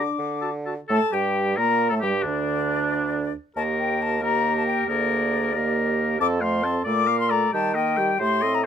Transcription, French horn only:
Already playing: D4
0.90 A3
1.13 G3
1.58 A#3
1.92 A3
2.03 G3
2.24 D3
3.58 A#3
4.22 A#3
4.88 A#3
5.54 A#3
6.19 C4
6.41 A3
6.63 C4
6.86 A3
7.07 A#3
7.30 A3
7.53 G3
7.74 A#3
7.98 G3
8.21 A3
8.43 C4

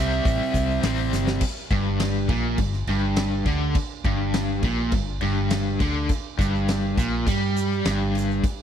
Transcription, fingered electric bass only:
Already playing: C2
0.25 A1
0.54 C2
0.83 A1
1.13 G1
1.71 G1
2.28 A#1
2.58 G1
2.87 G1
3.46 D2
4.04 G1
4.62 A#1
4.92 G1
5.22 G1
5.80 D2
6.39 G1
6.97 A#1
7.26 G2
7.85 G1

